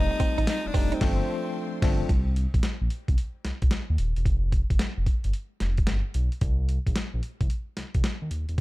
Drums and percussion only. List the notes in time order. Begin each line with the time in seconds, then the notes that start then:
0.20 kick, closed hi-hat, tambourine
0.38 closed hi-hat
0.47 snare, closed hi-hat, tambourine
0.74 kick, open hi-hat, tambourine
0.92 closed hi-hat
1.01 kick, snare, crash
1.82 kick, snare, crash
2.09 kick, closed hi-hat
2.36 closed hi-hat
2.54 kick, closed hi-hat
2.63 snare, closed hi-hat
2.90 closed hi-hat
3.08 kick, closed hi-hat
3.18 closed hi-hat
3.45 snare, closed hi-hat
3.62 kick, closed hi-hat
3.71 snare, closed hi-hat
3.98 closed hi-hat
4.16 closed hi-hat
4.26 kick, closed hi-hat
4.52 kick, closed hi-hat
4.70 kick, closed hi-hat
4.79 snare, closed hi-hat
5.06 kick, closed hi-hat
5.24 closed hi-hat
5.33 closed hi-hat
5.60 snare, closed hi-hat
5.78 kick, closed hi-hat
5.87 snare, closed hi-hat
6.14 closed hi-hat
6.32 closed hi-hat
6.41 kick, closed hi-hat
6.69 closed hi-hat
6.87 kick, closed hi-hat
6.96 snare, closed hi-hat
7.23 closed hi-hat
7.41 kick, closed hi-hat
7.50 closed hi-hat
7.77 snare, closed hi-hat
7.94 kick, closed hi-hat
8.04 snare, closed hi-hat
8.31 closed hi-hat
8.49 closed hi-hat